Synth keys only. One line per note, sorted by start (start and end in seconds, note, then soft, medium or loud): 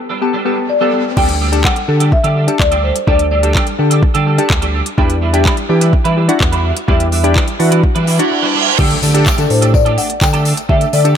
0.21 0.33 B3 medium
0.21 0.33 G4 medium
0.21 0.33 A4 medium
0.45 0.62 B3 medium
0.45 0.62 G4 medium
0.45 0.62 A4 medium
0.81 0.98 B3 medium
0.81 0.98 G4 medium
0.81 0.98 A4 medium
1.17 1.34 D4 medium
1.17 1.34 G4 medium
1.17 1.34 A4 medium
1.52 1.69 D4 medium
1.52 1.69 G4 medium
1.52 1.70 A4 medium
1.88 2.11 D4 medium
1.88 2.11 G4 medium
1.88 2.11 A4 medium
2.36 2.41 G4 medium
2.36 2.42 A4 medium
2.48 2.76 D4 medium
2.48 2.76 G4 medium
2.48 2.76 A4 medium
3.07 3.24 D4 medium
3.07 3.24 G4 medium
3.07 3.24 A4 medium
3.43 3.60 D4 medium
3.43 3.60 G4 medium
3.43 3.60 A4 medium
3.79 4.01 D4 medium
3.79 4.01 G4 medium
3.79 4.01 A4 medium
4.26 4.32 G4 medium
4.26 4.32 A4 medium
4.38 4.66 D4 medium
4.38 4.67 G4 medium
4.38 4.67 A4 loud
4.98 5.15 D4 medium
4.98 5.15 E4 medium
4.98 5.15 G4 loud
5.33 5.50 D4 medium
5.33 5.50 E4 medium
5.33 5.51 G4 medium
5.69 5.92 D4 medium
5.69 5.92 E4 medium
5.69 5.92 G4 medium
6.17 6.22 E4 medium
6.17 6.23 G4 loud
6.28 6.57 D4 medium
6.28 6.57 E4 medium
6.28 6.57 F#4 loud
6.88 7.05 D4 medium
6.88 7.05 E4 medium
6.88 7.05 G4 loud
7.24 7.41 D4 medium
7.24 7.41 E4 medium
7.24 7.41 G4 loud
7.59 7.82 D4 medium
7.59 7.82 E4 medium
7.59 7.82 F#4 loud
8.07 8.13 E4 medium
8.07 8.13 F#4 loud
8.19 8.47 D4 medium
8.19 8.47 E4 medium
8.19 8.47 F#4 loud
8.78 8.96 D4 medium
8.78 8.96 G4 medium
8.78 8.96 A4 loud
9.14 9.26 D4 medium
9.14 9.26 G4 medium
9.14 9.26 A4 loud
9.38 9.83 D4 medium
9.38 9.83 G4 medium
9.38 9.83 A4 medium
10.69 10.86 D4 medium
10.69 10.86 G4 medium
10.69 10.86 A4 medium
11.05 11.16 D4 medium
11.05 11.16 G4 medium
11.05 11.16 A4 medium